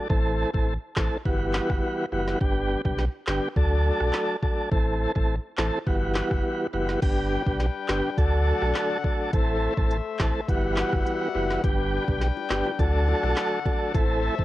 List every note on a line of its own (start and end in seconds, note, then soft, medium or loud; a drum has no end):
0.10 0.45 A1 loud
0.10 0.50 E3 medium
0.10 0.50 A3 medium
0.10 0.51 C4 medium
0.10 0.51 A4 loud
0.10 kick loud
0.54 0.77 A1 medium
0.54 0.74 E3 medium
0.54 0.74 A3 medium
0.54 0.74 C4 medium
0.54 0.74 A4 medium
0.54 kick medium
0.96 1.09 A1 medium
0.96 1.17 E3 medium
0.96 1.17 A3 medium
0.96 1.18 C4 medium
0.96 1.18 A4 medium
0.96 kick medium
0.96 snare loud
0.96 clap loud
1.25 1.60 G1 loud
1.25 2.05 E3 medium
1.25 2.06 G3 medium
1.25 2.06 B3 medium
1.25 2.06 F#4 loud
1.25 kick loud
1.53 snare loud
1.53 clap medium
1.70 1.80 F#1 medium
1.70 kick medium
1.70 cross-stick medium
2.12 2.35 F#1 medium
2.12 2.39 E3 medium
2.12 2.39 G3 medium
2.12 2.39 B3 medium
2.12 2.39 F#4 medium
2.28 snare medium
2.41 2.75 G1 loud
2.41 2.81 D3 medium
2.41 2.81 G3 medium
2.41 2.81 B3 medium
2.41 2.81 G4 loud
2.41 kick loud
2.85 3.08 B1 medium
2.85 3.05 D3 medium
2.85 3.05 G3 medium
2.85 3.05 B3 medium
2.85 3.05 G4 medium
2.85 kick medium
2.98 snare medium
3.27 3.39 G1 medium
3.27 3.48 D3 medium
3.27 3.48 G3 medium
3.27 3.48 B3 medium
3.27 3.49 G4 medium
3.27 snare loud
3.27 clap loud
3.56 3.91 D2 loud
3.56 4.36 F#3 medium
3.56 4.36 A3 medium
3.56 4.36 D4 medium
3.56 4.37 A4 loud
3.56 kick loud
4.00 4.11 B1 medium
4.00 cross-stick medium
4.13 snare loud
4.13 clap medium
4.43 4.69 F#3 medium
4.43 4.69 A3 medium
4.43 4.70 D4 medium
4.43 4.70 A4 medium
4.43 kick loud
4.71 5.06 A1 loud
4.71 5.12 E3 medium
4.71 5.12 A3 medium
4.71 5.12 C4 medium
4.71 5.12 A4 loud
4.71 kick loud
5.15 5.38 A1 medium
5.15 5.35 E3 medium
5.15 5.35 A3 medium
5.15 5.36 C4 medium
5.15 5.36 A4 medium
5.15 kick medium
5.58 5.70 A1 medium
5.58 5.79 E3 medium
5.58 5.79 A3 medium
5.58 5.79 C4 medium
5.58 5.79 A4 medium
5.58 snare loud
5.58 clap loud
5.87 6.22 G1 loud
5.87 6.67 E3 medium
5.87 6.67 G3 medium
5.87 6.67 B3 medium
5.87 6.67 F#4 loud
5.87 kick loud
6.15 snare loud
6.15 clap medium
6.31 6.42 F#1 medium
6.31 kick medium
6.31 cross-stick medium
6.73 6.96 F#1 medium
6.73 7.00 E3 medium
6.73 7.00 G3 medium
6.73 7.00 B3 medium
6.73 7.00 F#4 medium
6.89 snare medium
7.02 7.37 G1 loud
7.02 7.43 D3 medium
7.02 7.43 G3 medium
7.02 8.17 G3 medium
7.02 7.43 B3 medium
7.02 9.31 D4 medium
7.02 7.43 G4 medium
7.02 8.17 B4 medium
7.02 8.17 G5 medium
7.02 kick loud
7.02 closed hi-hat medium
7.02 crash medium
7.46 7.69 B1 medium
7.46 7.66 D3 medium
7.46 7.66 G3 medium
7.46 7.66 B3 medium
7.46 7.67 G4 medium
7.46 kick medium
7.60 snare medium
7.60 closed hi-hat medium
7.88 8.01 G1 medium
7.88 8.10 D3 medium
7.88 8.10 G3 medium
7.88 8.10 B3 medium
7.88 8.10 G4 medium
7.88 snare loud
7.88 clap loud
8.18 8.52 D2 loud
8.18 9.32 D3 medium
8.18 8.98 F#3 medium
8.18 8.98 A3 medium
8.18 8.98 D4 medium
8.18 9.32 A4 medium
8.18 8.98 A4 loud
8.18 9.32 F#5 medium
8.18 kick loud
8.18 closed hi-hat medium
8.62 8.73 B1 medium
8.62 cross-stick medium
8.75 snare loud
8.75 clap loud
8.75 closed hi-hat medium
9.04 9.31 F#3 medium
9.04 9.31 A3 medium
9.04 9.31 D4 medium
9.04 9.31 A4 medium
9.04 kick medium
9.33 9.68 A1 loud
9.33 9.74 E3 medium
9.33 10.48 A3 medium
9.33 9.74 A3 medium
9.33 9.74 C4 medium
9.33 10.48 A4 medium
9.33 9.74 A4 loud
9.33 10.48 C5 medium
9.33 10.48 E5 medium
9.33 kick loud
9.33 closed hi-hat medium
9.77 10.00 A1 medium
9.77 9.97 E3 medium
9.77 9.97 A3 medium
9.77 9.97 C4 medium
9.77 9.97 A4 medium
9.77 kick medium
9.91 closed hi-hat medium
10.19 10.32 A1 medium
10.19 10.40 E3 medium
10.19 10.41 A3 medium
10.19 10.41 C4 medium
10.19 10.41 A4 medium
10.19 kick medium
10.19 snare loud
10.19 clap loud
10.48 10.83 G1 loud
10.48 11.28 E3 medium
10.48 11.29 G3 medium
10.48 11.63 G3 medium
10.48 11.29 B3 medium
10.48 11.63 F#4 medium
10.48 11.29 F#4 loud
10.48 11.63 E5 medium
10.48 11.63 F#5 medium
10.48 kick loud
10.48 closed hi-hat medium
10.76 snare loud
10.76 clap loud
10.93 11.03 F#1 medium
10.93 kick medium
10.93 cross-stick loud
11.06 closed hi-hat medium
11.35 11.58 F#1 medium
11.35 11.62 E3 medium
11.35 11.62 G3 medium
11.35 11.62 B3 medium
11.35 11.62 F#4 medium
11.51 snare medium
11.64 11.98 G1 loud
11.64 12.04 D3 medium
11.64 12.78 G3 medium
11.64 12.04 G3 medium
11.64 12.05 B3 medium
11.64 13.92 D4 medium
11.64 12.05 G4 loud
11.64 12.78 B4 medium
11.64 12.78 G5 medium
11.64 kick loud
11.64 closed hi-hat medium
11.64 high bongo medium
12.08 12.31 B1 medium
12.08 12.28 D3 medium
12.08 12.28 G3 medium
12.08 12.28 B3 medium
12.08 12.28 G4 medium
12.08 kick medium
12.21 snare medium
12.21 closed hi-hat medium
12.37 high bongo soft
12.50 12.62 G1 medium
12.50 12.71 D3 medium
12.50 12.71 G3 medium
12.50 12.72 B3 medium
12.50 12.72 G4 medium
12.50 snare loud
12.50 clap loud
12.50 low bongo medium
12.66 high bongo medium
12.79 13.14 D2 loud
12.79 13.93 D3 medium
12.79 13.59 F#3 medium
12.79 13.59 A3 medium
12.79 13.59 D4 medium
12.79 14.45 A4 medium
12.79 13.60 A4 loud
12.79 13.93 F#5 medium
12.79 kick loud
12.79 closed hi-hat medium
12.79 high bongo medium
13.08 high bongo medium
13.23 13.34 B1 medium
13.23 cross-stick medium
13.23 high bongo medium
13.36 snare loud
13.36 clap loud
13.36 closed hi-hat medium
13.66 13.92 F#3 medium
13.66 13.92 A3 medium
13.66 13.93 D4 medium
13.66 13.93 A4 medium
13.66 kick medium
13.66 low bongo medium
13.94 14.29 A1 loud
13.94 14.35 E3 medium
13.94 14.35 A3 medium
13.94 14.45 A3 medium
13.94 14.35 C4 medium
13.94 14.35 A4 loud
13.94 14.45 C5 medium
13.94 14.45 E5 medium
13.94 kick loud
13.94 closed hi-hat medium
13.94 high bongo medium
14.38 14.45 A1 medium
14.38 14.45 E3 medium
14.38 14.45 A3 medium
14.38 14.45 C4 medium
14.38 14.45 A4 medium
14.38 kick medium